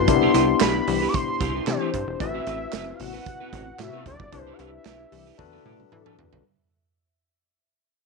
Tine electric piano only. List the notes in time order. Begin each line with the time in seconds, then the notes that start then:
0.07 D4 E4 G4 A#4
0.15 B3
1.67 D4 E4 G4 C5
2.20 C4 E4 F#4 B4
4.32 D4 E4 G4 B4
5.38 D4 F#4 A4 B4